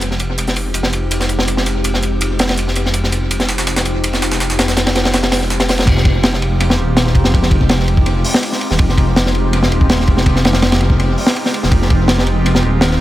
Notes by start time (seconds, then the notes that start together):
0.01 F1 G#3 C4 D#4 F4 G4, closed hi-hat, ride
0.11 snare
0.20 closed hi-hat, ride
0.38 closed hi-hat, ride
0.47 snare, closed hi-hat
0.56 open hi-hat, ride
0.74 closed hi-hat, ride
0.83 snare
0.93 closed hi-hat, ride
1.11 closed hi-hat, ride
1.20 snare
1.29 closed hi-hat, ride
1.39 snare
1.48 closed hi-hat, ride
1.57 snare
1.66 snare, closed hi-hat, ride
1.84 closed hi-hat, ride
1.94 snare
2.03 closed hi-hat, ride
2.21 closed hi-hat, ride
2.39 snare, closed hi-hat, ride
2.49 snare, ride
2.58 closed hi-hat, ride
2.68 snare
2.76 closed hi-hat, ride
2.86 snare
2.94 G#3 C4 D#4 F4 G4, closed hi-hat, ride
3.04 snare
3.12 closed hi-hat, ride
3.31 closed hi-hat, ride
3.40 snare, closed hi-hat
3.49 snare, closed hi-hat, ride
3.58 snare, closed hi-hat
3.67 snare, closed hi-hat, ride
3.76 snare, closed hi-hat
3.85 closed hi-hat, ride
4.04 closed hi-hat, ride
4.13 snare
4.22 snare, closed hi-hat, ride
4.32 snare, closed hi-hat
4.40 snare, closed hi-hat, ride
4.50 snare, closed hi-hat
4.59 snare, closed hi-hat, ride
4.68 snare, closed hi-hat
4.76 snare, closed hi-hat, ride
4.87 snare, ride
4.95 snare, closed hi-hat, ride
5.05 snare, ride
5.14 snare, closed hi-hat, ride
5.23 snare, closed hi-hat, ride
5.32 snare, open hi-hat, ride
5.41 snare
5.50 snare, closed hi-hat, ride
5.60 snare, closed hi-hat, ride
5.69 snare, open hi-hat, ride
5.78 snare, ride
5.87 F1, kick, crash, ride
5.97 snare
6.05 kick, ride
6.14 G#3 C4 D#4 F4 G4
6.23 snare, ride
6.33 snare
6.42 ride
6.60 ride
6.70 snare
6.79 D#1
6.97 snare, ride
7.06 snare
7.15 F1, kick, ride
7.24 snare
7.34 kick, ride
7.43 snare
7.51 kick, ride
7.61 G#3 C4 D#4 F4 G4, kick
7.69 F1, snare, ride
7.79 snare
7.88 ride
7.97 kick
8.06 F1, ride
8.24 open hi-hat
8.34 snare
8.43 ride
8.52 snare
8.61 ride
8.71 D#1, snare
8.79 F1, kick, ride
8.89 snare
8.98 kick, ride
9.08 G#3 C4 D#4 F4 G4
9.16 snare, ride
9.26 snare
9.35 ride
9.53 ride
9.63 snare
9.71 D#1, ride
9.81 kick
9.89 snare, ride
10.00 snare
10.07 F1, kick, ride
10.17 snare
10.26 kick, ride
10.36 snare
10.45 snare, ride
10.53 G#3 C4 D#4 F4 G4, snare, ride
10.62 F1, snare, ride
10.72 snare, ride
10.81 ride
10.90 kick
10.99 F1, ride
11.18 open hi-hat
11.27 snare
11.36 ride
11.45 snare
11.54 ride
11.63 D#1, snare
11.72 F1, kick, ride
11.82 snare
11.90 kick, ride
12.00 G#3 C4 D#4 F4 G4
12.08 snare, ride
12.18 snare
12.27 ride
12.46 ride
12.55 snare
12.64 D#1
12.81 snare, ride
12.91 snare